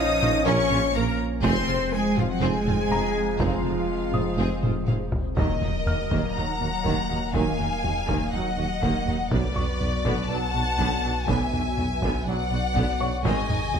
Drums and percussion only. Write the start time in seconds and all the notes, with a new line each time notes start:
0.22 taiko mid
0.71 taiko mid
1.44 taiko
2.18 taiko mid
2.67 taiko mid
3.40 taiko
4.14 taiko mid
4.63 taiko mid
4.88 taiko mid
5.12 taiko low
5.37 taiko
5.61 taiko low-mid
5.86 taiko low-mid
6.11 taiko
6.85 taiko
7.34 taiko
7.60 taiko low-mid
7.84 taiko low-mid
8.09 taiko
8.83 taiko
9.31 taiko
9.56 taiko low-mid
9.81 taiko low-mid
10.05 taiko
10.79 taiko
11.28 taiko
11.53 taiko low-mid
11.78 taiko low-mid
12.02 taiko
12.76 taiko
13.25 taiko
13.50 taiko low-mid
13.74 taiko low-mid